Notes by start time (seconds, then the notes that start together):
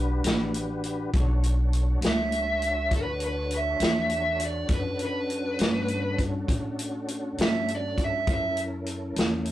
Already playing: B1 D4 F#4 G4 B4
0.24 A1, snare, closed hi-hat
0.54 closed hi-hat
0.84 closed hi-hat
1.13 B1 D4 F#4 A4 C#5, kick, closed hi-hat
1.43 closed hi-hat
1.73 closed hi-hat
2.01 C#2, snare, closed hi-hat
2.08 E5
2.32 closed hi-hat
2.62 closed hi-hat
2.91 D2, kick, closed hi-hat
2.96 B4
3.20 closed hi-hat
3.27 B4
3.51 closed hi-hat
3.57 E5
3.80 E2, snare, closed hi-hat
4.10 closed hi-hat
4.40 closed hi-hat
4.45 D5
4.69 F#2 C#4 D4 F#4 A4, kick, closed hi-hat
4.73 B4
4.99 closed hi-hat
5.05 B4
5.30 closed hi-hat
5.59 G2, snare, closed hi-hat
5.88 closed hi-hat
6.19 kick, closed hi-hat
6.48 A2, kick, closed hi-hat
6.79 closed hi-hat
7.08 closed hi-hat
7.38 G2, snare, closed hi-hat
7.42 E5
7.68 closed hi-hat
7.75 D5
7.98 kick, closed hi-hat
8.04 E5
8.27 F#2 C#4 E4 A4 A#4, kick, closed hi-hat
8.32 E5
8.57 closed hi-hat
8.86 closed hi-hat
9.16 E2, snare, closed hi-hat
9.45 closed hi-hat